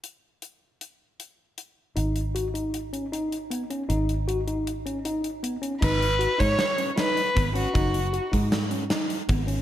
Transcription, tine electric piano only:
X:1
M:5/4
L:1/8
Q:1/4=156
K:G#m
V:1 name="Tine electric piano"
z8 z2 | D2 F D2 C D2 B, C | D2 F D2 C D2 B, C | D2 F D2 C D2 B, C |
D2 F D2 C D2 B, C |]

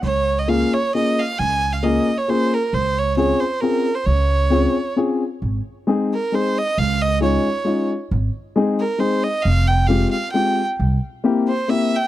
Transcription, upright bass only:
X:1
M:3/4
L:1/8
Q:"Swing" 1/4=134
K:Db
V:1 name="Upright bass" clef=bass
D,,4 z2 | D,,4 z2 | D,,4 z2 | D,,4 z2 |
[K:Ab] A,,, z4 z | D,,4 z2 | A,,, z4 z | F,,,4 z2 |
C,, z4 z |]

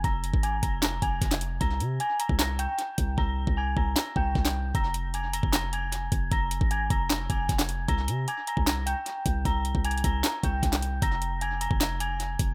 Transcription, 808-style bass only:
X:1
M:4/4
L:1/16
Q:1/4=153
K:Fdor
V:1 name="808-style bass" clef=bass
F,,,3 A,,,3 F,,,4 F,,,2 F,,,4 | C,,2 C,2 z3 C,,4 z3 C,,2 | C,,3 C,,3 C,,2 z2 C,,2 C,,4 | F,,,6- F,,, F,,,6- F,,, F,,,2 |
F,,,3 A,,,3 F,,,4 F,,,2 F,,,4 | C,,2 C,2 z3 C,,4 z3 C,,2 | C,,3 C,,3 C,,2 z2 C,,2 C,,4 | F,,,6- F,,, F,,,6- F,,, F,,,2 |]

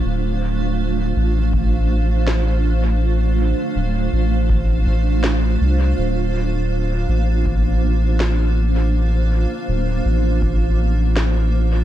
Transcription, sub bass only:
X:1
M:4/4
L:1/8
Q:1/4=81
K:Dm
V:1 name="Sub bass" clef=bass
D,,,3 A,,,4- A,,,- | A,,, z D,,, A,,,2 A,,,2 C,, | D,,,3 A,,,4- A,,,- | A,,, z D,,, A,,,4- A,,, |]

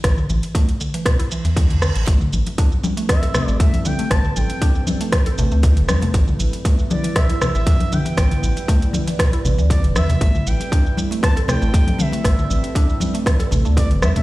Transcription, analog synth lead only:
X:1
M:4/4
L:1/16
Q:"Swing 16ths" 1/4=118
K:Am
V:1 name="Analog synth lead"
z16 | z8 e4 e2 g2 | a2 g4 z8 z2 | z6 d2 e3 e3 g2- |
g6 z6 d2 e2- | e2 g4 z2 a2 g4 e2- | e8- e2 z2 d2 e e |]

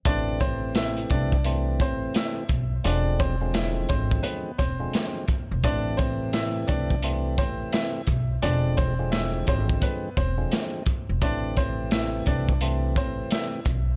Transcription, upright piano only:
X:1
M:4/4
L:1/16
Q:"Swing 16ths" 1/4=86
K:Am
V:1 name="Upright piano"
[Dd]2 [Cc]2 [Ee]2 [Dd]4 [Cc]2 [Ee]2 z2 | [Dd]2 [Cc]2 [Ee]2 [Cc]2 [B,B]2 [Cc]3 z3 | [Dd]2 [Cc]2 [Ee]2 [Dd]4 [Cc]2 [Ee]2 z2 | [Dd]2 [Cc]2 [Ee]2 [Cc]2 [B,B]2 [Cc]3 z3 |
[Dd]2 [Cc]2 [Ee]2 [Dd]4 [Cc]2 [Ee]2 z2 |]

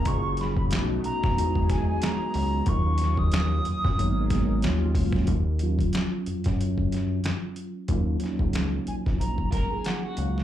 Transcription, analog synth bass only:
X:1
M:4/4
L:1/16
Q:"Swing 16ths" 1/4=92
K:Ebm
V:1 name="Analog synth bass" clef=bass
G,,,4 =B,,,2 B,,, B,,, =E,,4 z2 D,,2 | E,,6 G,, G,, A,,,4 E,,2 D,,2 | E,,4 z2 G,, G,,4- G,, z4 | E,,2 z D,,3 B,,, B,,, B,,,2 A,,, z3 D,,2 |]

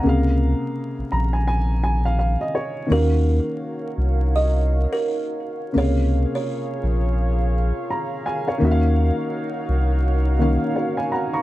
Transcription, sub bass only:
X:1
M:4/4
L:1/16
Q:"Swing 16ths" 1/4=84
K:Ebdor
V:1 name="Sub bass" clef=bass
D,,3 z2 B,,, B,,,6- B,,, z3 | E,,3 z3 C,,4- C,, z4 z | D,,3 z3 B,,,4- B,,, z4 z | E,,3 z3 C,,4- C,, z4 z |]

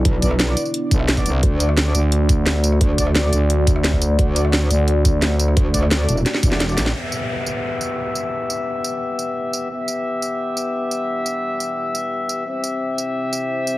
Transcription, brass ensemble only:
X:1
M:4/4
L:1/16
Q:1/4=174
K:Em
V:1 name="Brass ensemble"
z2 [B,Fd] z2 [B,Fd]2 z6 [B,Fd]2 z | z2 [A,Fd] z2 [A,Fd]2 z8 z | z2 [A,Fd] z2 [A,Fd]2 z8 z | z2 [A,Fd] z12 z |
z2 [A,Fd] z2 [A,Fd]2 z4 [A,Fd] z [A,Fd]2 z | [B,Ge]16- | [B,Ge]16 | [B,Ge]16- |
[B,Ge]16 | [CGe]16 |]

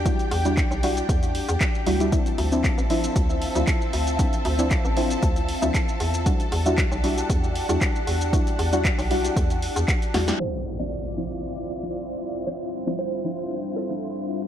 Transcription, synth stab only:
X:1
M:4/4
L:1/16
Q:"Swing 16ths" 1/4=116
K:Dm
V:1 name="Synth stab"
[G,DE^F] z2 [G,DEF] z2 [G,DEF]2 z6 [G,DEF] [G,DEG] | [F,CDE] z2 [F,CDE] z2 [F,CDE]2 z3 [F,CDE]2 z3 | [F,CDE] z2 [F,CDE] z2 [F,CDE]2 z3 [F,CDE]2 z3 | [G,DE^F] z2 [G,DEF] z2 [G,DEF]2 z3 [G,DEF]2 z3 |
[G,DE^F] z2 [G,DEF] z2 [G,DEF]2 z6 [G,DEF] [G,DEG] | F, z2 [F,CDE] z2 [F,CDE]2 z3 [F,CDE]2 z3 | [F,CDE] z2 [F,CDE] z2 [F,CDE]2 z3 [F,CDE]2 z3 |]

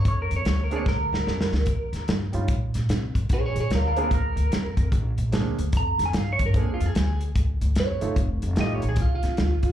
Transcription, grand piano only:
X:1
M:4/4
L:1/8
Q:"Swing" 1/4=148
K:Bbmix
V:1 name="Grand piano"
z3 [B,CDA] z4 | z3 [G,_DEF] z4 | z3 [B,CDA] z4 | z2 [B,CDA] z4 z |
[B,CDA] z6 [=A,EF=A] | z2 [=A,EFG] z4 z |]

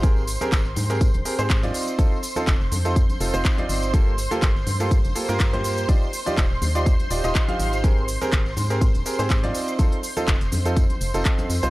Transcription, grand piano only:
X:1
M:4/4
L:1/16
Q:"Swing 16ths" 1/4=123
K:Fmix
V:1 name="Grand piano"
[CG_AB] z2 [CGAB] z3 [CGAB] z2 [CGAB] [CGAc]2 [CEFd]3 | [CEFA] z2 [CEFA] z3 [CEFA] z2 [CEFA] [CEFc]2 [CEFd]3 | [B,FGA] z2 [B,FGA] z3 [B,FGA] z2 [B,FGA] [B,FGB]2 [B,FGc]3 | [EFGd] z2 [EFGd] z3 [EFGd] z2 [EFGd] [EFGe]2 [EFGf]3 |
[CG_AB] z2 [CGAB] z3 [CGAB] z2 [CGAB] [CGAc]2 [CEFd]3 | [CEFA] z2 [CEFA] z3 [CEFA] z3 [CEFA] [EA]2 z [CEFc] |]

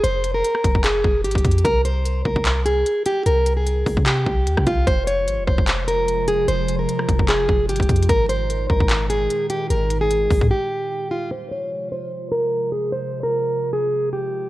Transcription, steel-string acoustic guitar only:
X:1
M:4/4
L:1/16
Q:1/4=149
K:Fm
V:1 name="Steel-string acoustic guitar"
c3 B4- B A4 G4 | B2 c4 B4 A4 G2 | B3 A4- A G6 F2 | c2 d4 c4 B4 A2 |
c3 B4- B A4 G4 | B2 c4 B4 A4 G2 | B3 A4- A G6 F2 | c2 d4 c4 B4 A2 |
c3 B4- B A4 G4 |]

